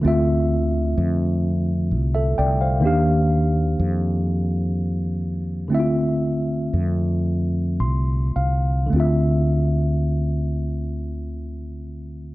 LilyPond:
<<
  \new Staff \with { instrumentName = "Tine electric piano" } { \time 6/8 \key d \minor \tempo 4. = 40 << { r2 r16 <a' e''>16 <d'' g''>16 <c'' f''>16~ | <c'' f''>16 r2 r8. | r2 c'''8 f''8 | r2. | } \\ { <d a c' f' e''>2. | <ees bes d' g' f''>2. | <d a c' e' f' e''>2. | <d a c' f' e''>2. | } >> }
  \new Staff \with { instrumentName = "Fretless electric bass" } { \clef bass \time 6/8 \key d \minor d,4 f,4 c,8 c,8 | ees,4 f,2 | d,4 f,4 c,8 c,8 | d,2. | }
>>